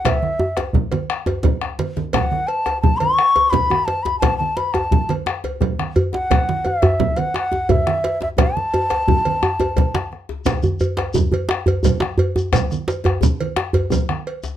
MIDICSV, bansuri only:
0, 0, Header, 1, 2, 480
1, 0, Start_track
1, 0, Key_signature, 3, "major"
1, 0, Tempo, 346620
1, 76, Time_signature, 12, 3, 24, 8
1, 20175, End_track
2, 0, Start_track
2, 0, Title_t, "Bansuri"
2, 0, Program_c, 0, 73
2, 91, Note_on_c, 0, 76, 74
2, 805, Note_off_c, 0, 76, 0
2, 2976, Note_on_c, 0, 81, 74
2, 3023, Note_on_c, 0, 78, 80
2, 3037, Note_off_c, 0, 81, 0
2, 3427, Note_on_c, 0, 81, 85
2, 3448, Note_off_c, 0, 78, 0
2, 3893, Note_off_c, 0, 81, 0
2, 3901, Note_on_c, 0, 81, 84
2, 4138, Note_on_c, 0, 85, 102
2, 4159, Note_off_c, 0, 81, 0
2, 4850, Note_on_c, 0, 83, 90
2, 4871, Note_off_c, 0, 85, 0
2, 5335, Note_on_c, 0, 81, 94
2, 5355, Note_off_c, 0, 83, 0
2, 5579, Note_on_c, 0, 83, 86
2, 5599, Note_off_c, 0, 81, 0
2, 5797, Note_off_c, 0, 83, 0
2, 5805, Note_on_c, 0, 81, 89
2, 6047, Note_off_c, 0, 81, 0
2, 6063, Note_on_c, 0, 81, 80
2, 6325, Note_on_c, 0, 83, 80
2, 6346, Note_off_c, 0, 81, 0
2, 6558, Note_on_c, 0, 81, 73
2, 6579, Note_off_c, 0, 83, 0
2, 7102, Note_off_c, 0, 81, 0
2, 8491, Note_on_c, 0, 78, 85
2, 9237, Note_on_c, 0, 76, 84
2, 9258, Note_off_c, 0, 78, 0
2, 9936, Note_on_c, 0, 78, 85
2, 9957, Note_off_c, 0, 76, 0
2, 10667, Note_on_c, 0, 76, 84
2, 10687, Note_off_c, 0, 78, 0
2, 11376, Note_off_c, 0, 76, 0
2, 11391, Note_on_c, 0, 76, 81
2, 11474, Note_off_c, 0, 76, 0
2, 11639, Note_on_c, 0, 81, 95
2, 13965, Note_off_c, 0, 81, 0
2, 20175, End_track
0, 0, End_of_file